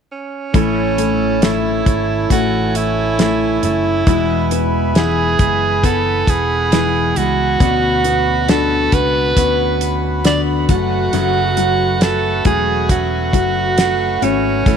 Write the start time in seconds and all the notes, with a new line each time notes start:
0.12 C#4
0.54 A1 A2 E3 A3 C#4 E4 A4 C#5 A5, kick, closed hi-hat
0.98 A3, closed hi-hat
1.42 E3 A3 C#4 E4, snare, closed hi-hat
1.86 G#1 A3 C#4 E4, kick, closed hi-hat
2.30 A1 E3 A3 C#4 E4 F#4 G#5, kick, closed hi-hat
2.75 E4, closed hi-hat
3.18 E3 A3 C#4 E4, snare, closed hi-hat
3.62 F#1 A3 C#4 E4, closed hi-hat
4.06 E1 E2 B2 E3 G#3 B3 E4 B4 E5 G#5 B5, kick, closed hi-hat
4.51 B3, closed hi-hat
4.95 E3 G#3 B3 E4 G#4, snare, closed hi-hat
5.39 F#1 E3 G#3 B3 E4, kick, closed hi-hat
5.83 E3 B3 E4 A4 F#5, kick, closed hi-hat
6.27 E1 G#4, kick, closed hi-hat
6.71 E3 G#3 B3 E4, snare, closed hi-hat
7.16 C#2 E3 G#3 B3 E4 F#4, closed hi-hat
7.60 D2 B2 D3 B3 C#4 F#4 B4 F#5, kick, closed hi-hat
8.04 B3, closed hi-hat
8.48 D3 B3 C#4 D4 F#4 A4, snare, closed hi-hat
8.92 C#2 B3 C#4 F#4 B4, kick, closed hi-hat
9.36 D2 D3 B3 C#4 F#4, kick, closed hi-hat
9.81 closed hi-hat
10.24 D3 B3 F#4 D5, snare, closed hi-hat
10.68 F#1 F#3 A3 C#4 F#4 F#5, kick, closed hi-hat
11.13 F#1 F#2 C#3 F#3 A3 C#4 F#4, closed hi-hat
11.57 F#3, closed hi-hat
12.01 F#3 A3 C#4 F#4 A4, snare, closed hi-hat
12.45 E1 F#3 A3 C#4 F#4 G#4, kick, closed hi-hat
12.89 F#3 A3 C#4 F#4, kick, closed hi-hat
13.33 F#1 F#3, kick, closed hi-hat
13.77 F#3 A3 C#4 F#4, snare, closed hi-hat
14.21 G#1 F#3 A3 C#4 F#4, closed hi-hat
14.66 A1 A2 E3 A3 C#4 E4, kick, closed hi-hat